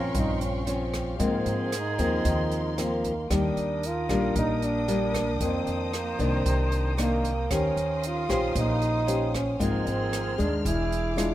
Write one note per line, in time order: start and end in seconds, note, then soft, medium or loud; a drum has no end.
0.00 0.13 A#1 medium
0.00 0.12 G2 medium
0.00 0.63 F3 medium
0.00 0.63 C4 medium
0.00 0.63 C#4 medium
0.00 0.93 A#4 loud
0.00 3.25 F5 medium
0.00 1.18 G5 medium
0.00 1.18 C6 medium
0.00 1.18 C#6 medium
0.14 1.21 A#1 loud
0.14 1.17 G2 medium
0.14 0.46 D#4 medium
0.14 kick medium
0.14 closed hi-hat soft
0.41 0.95 C#4 medium
0.41 closed hi-hat soft
0.67 1.15 F3 medium
0.67 1.16 C4 medium
0.67 1.16 C#4 medium
0.67 closed hi-hat soft
0.94 kick soft
0.94 cross-stick medium
0.94 closed hi-hat soft
1.13 1.21 G4 medium
1.19 2.22 G#2 medium
1.19 1.44 G#2 loud
1.19 1.72 F3 medium
1.19 1.72 A#3 medium
1.19 1.72 C4 medium
1.19 3.04 G#4 loud
1.19 3.28 A#4 medium
1.19 3.28 C6 medium
1.19 kick medium
1.19 closed hi-hat soft
1.25 1.79 C4 medium
1.46 1.95 G#2 medium
1.46 closed hi-hat soft
1.72 cross-stick medium
1.72 closed hi-hat soft
1.78 2.01 D#4 medium
1.98 2.23 D#2 medium
1.98 2.73 F3 medium
1.98 2.74 A#3 medium
1.98 2.74 C4 medium
1.98 kick soft
1.98 closed hi-hat soft
2.04 2.83 D#4 medium
2.25 3.26 D#2 loud
2.25 3.27 D#3 medium
2.25 kick medium
2.25 closed hi-hat soft
2.51 closed hi-hat soft
2.78 3.12 F3 medium
2.78 3.12 A#3 medium
2.78 3.12 C4 medium
2.78 cross-stick medium
2.78 closed hi-hat soft
2.82 3.36 A#3 medium
3.04 kick soft
3.04 closed hi-hat soft
3.30 3.55 D#2 loud
3.30 4.33 D#3 medium
3.30 3.82 G3 medium
3.30 3.83 A#3 soft
3.30 7.46 D4 medium
3.30 3.83 D4 medium
3.30 5.42 A#4 medium
3.30 9.56 G5 medium
3.30 7.46 D#6 medium
3.30 kick medium
3.30 cross-stick medium
3.30 closed hi-hat soft
3.35 3.88 D4 medium
3.56 4.05 D#2 medium
3.56 closed hi-hat soft
3.83 4.37 F4 loud
3.83 closed hi-hat soft
4.09 4.34 A#1 medium
4.09 4.84 G3 medium
4.09 4.84 A#3 medium
4.09 4.84 D4 medium
4.09 kick soft
4.09 cross-stick medium
4.09 closed hi-hat soft
4.35 5.41 A#1 loud
4.35 5.38 A#2 medium
4.35 4.66 D#4 loud
4.35 kick medium
4.35 closed hi-hat soft
4.62 5.42 D4 loud
4.62 closed hi-hat soft
4.88 5.22 G3 medium
4.88 5.22 A#3 medium
4.88 5.22 D4 medium
4.88 closed hi-hat soft
5.14 kick soft
5.14 cross-stick medium
5.14 closed hi-hat soft
5.40 6.43 F2 medium
5.40 5.65 F2 loud
5.40 5.93 D#3 soft
5.40 5.93 A#3 medium
5.40 5.97 C4 medium
5.40 5.93 D4 medium
5.40 7.52 C5 loud
5.40 7.48 A#5 medium
5.40 kick medium
5.40 closed hi-hat soft
5.66 6.15 F2 medium
5.66 closed hi-hat soft
5.94 6.23 A#3 medium
5.94 cross-stick medium
5.94 closed hi-hat soft
6.19 6.44 C2 loud
6.19 6.94 D#3 medium
6.19 6.94 A#3 medium
6.19 6.72 C4 medium
6.19 6.94 D4 medium
6.19 kick soft
6.19 closed hi-hat soft
6.45 7.51 C2 loud
6.45 7.48 C3 soft
6.45 kick medium
6.45 closed hi-hat soft
6.72 closed hi-hat soft
6.97 7.31 D#3 medium
6.97 7.32 A#3 medium
6.97 7.32 D4 medium
6.97 cross-stick medium
6.97 closed hi-hat soft
7.02 7.55 A#3 loud
7.24 kick soft
7.24 closed hi-hat soft
7.50 7.75 D#2 loud
7.50 8.53 D#3 medium
7.50 8.25 C#4 medium
7.50 8.08 C#4 medium
7.50 8.25 G4 medium
7.50 9.33 A#4 medium
7.50 8.25 C5 medium
7.50 9.59 F5 medium
7.50 9.58 C6 medium
7.50 9.59 D#6 medium
7.50 kick medium
7.50 cross-stick medium
7.50 closed hi-hat soft
7.76 8.25 D#2 medium
7.76 closed hi-hat soft
8.03 8.57 F4 loud
8.03 closed hi-hat soft
8.29 8.54 A#1 medium
8.29 9.03 C#4 medium
8.29 9.04 G4 medium
8.29 9.04 C5 medium
8.29 kick soft
8.29 cross-stick medium
8.29 closed hi-hat soft
8.55 9.60 A#1 loud
8.55 9.57 A#2 soft
8.55 9.39 D#4 loud
8.55 kick medium
8.55 closed hi-hat soft
8.82 closed hi-hat soft
9.07 9.55 C#4 medium
9.07 9.56 G4 medium
9.07 9.56 C5 medium
9.07 closed hi-hat soft
9.34 9.65 C#4 medium
9.34 kick soft
9.34 cross-stick medium
9.34 closed hi-hat soft
9.59 9.84 G#1 medium
9.59 10.62 G#2 medium
9.59 10.34 F3 medium
9.59 10.34 A#3 medium
9.59 10.35 C4 medium
9.59 10.61 G#4 loud
9.59 10.64 A#4 medium
9.59 10.64 C6 medium
9.59 11.34 F6 medium
9.59 kick medium
9.59 closed hi-hat soft
9.64 9.91 D#4 medium
9.86 10.35 G#1 medium
9.86 10.44 C4 medium
9.86 closed hi-hat soft
10.13 cross-stick medium
10.13 closed hi-hat soft
10.38 10.63 D#2 medium
10.38 11.13 G#3 medium
10.38 11.13 D4 medium
10.38 10.67 D4 medium
10.38 kick soft
10.38 closed hi-hat soft
10.65 11.34 E1 loud
10.65 11.34 E3 medium
10.65 11.34 E4 loud
10.65 11.34 G#4 medium
10.65 11.34 G#4 loud
10.65 11.34 D6 medium
10.65 kick medium
10.65 closed hi-hat soft
10.92 closed hi-hat soft
11.16 11.34 G#3 medium
11.16 11.34 D4 medium
11.16 11.34 F4 medium
11.16 cross-stick medium
11.16 closed hi-hat soft